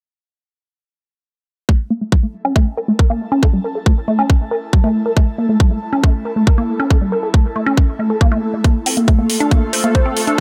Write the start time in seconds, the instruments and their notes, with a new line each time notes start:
1.69 synth arpeggio sound A3, analog synth pad E4, kick
1.84 analog synth pad A4
1.90 synth arpeggio sound A#3
2.01 synth arpeggio sound A3
2.12 synth arpeggio sound G3, kick
2.23 synth arpeggio sound A3
2.28 analog synth pad A5
2.45 synth arpeggio sound C#4
2.56 synth arpeggio sound A3, kick
2.77 synth arpeggio sound A#4
2.88 synth arpeggio sound A3
2.99 synth arpeggio sound A#4, kick
3.10 synth arpeggio sound A#3
3.32 synth arpeggio sound C#4
3.43 synth arpeggio sound A4, kick
3.54 synth arpeggio sound G3
3.64 synth arpeggio sound A#4
3.75 synth arpeggio sound A4
3.86 synth arpeggio sound A3, kick
4.08 synth arpeggio sound A3
4.19 synth arpeggio sound C#4
4.30 kick
4.51 synth arpeggio sound A#4
4.73 synth arpeggio sound G3, kick
4.84 synth arpeggio sound A3
5.06 synth arpeggio sound A#4
5.17 synth arpeggio sound A3, kick
5.38 synth arpeggio sound A#3
5.49 synth arpeggio sound A3
5.60 synth arpeggio sound G3, kick
5.71 synth arpeggio sound A3
5.93 synth arpeggio sound C#4
6.03 synth arpeggio sound A3, kick
6.25 synth arpeggio sound A#4
6.36 synth arpeggio sound A3
6.47 synth arpeggio sound A#4, kick
6.58 synth arpeggio sound A#3
6.80 synth arpeggio sound C#4
6.90 synth arpeggio sound A4, kick
7.01 synth arpeggio sound G3
7.12 synth arpeggio sound A#4
7.23 synth arpeggio sound A4
7.34 synth arpeggio sound A3, kick
7.56 synth arpeggio sound A3
7.67 synth arpeggio sound C#4
7.77 kick
7.99 synth arpeggio sound A3
8.10 synth arpeggio sound A4
8.21 synth arpeggio sound A#3, kick
8.32 synth arpeggio sound A3
8.54 synth arpeggio sound A3
8.64 ambient pad A3 A4, synth arpeggio sound A#3, analog synth pad F4, kick, closed hi-hat
8.86 synth arpeggio sound C4, open hi-hat
8.97 synth arpeggio sound A#3, closed hi-hat
9.08 synth arpeggio sound A3, kick, closed hi-hat
9.19 synth arpeggio sound A#3
9.30 open hi-hat
9.40 synth arpeggio sound D4, closed hi-hat
9.51 synth arpeggio sound A#3, kick, closed hi-hat
9.73 synth arpeggio sound C5, open hi-hat
9.84 synth arpeggio sound A#3, closed hi-hat
9.95 synth arpeggio sound C5, kick, closed hi-hat
10.06 synth arpeggio sound C4
10.17 open hi-hat
10.27 synth arpeggio sound D4, closed hi-hat